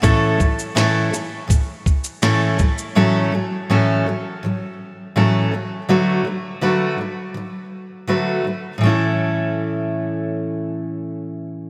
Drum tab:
SH |x-xxx-x-x-xxx-xx|----------------|----------------|----------------|
SD |----o-------o---|----------------|----------------|----------------|
BD |o-o-----o-o---o-|----------------|----------------|----------------|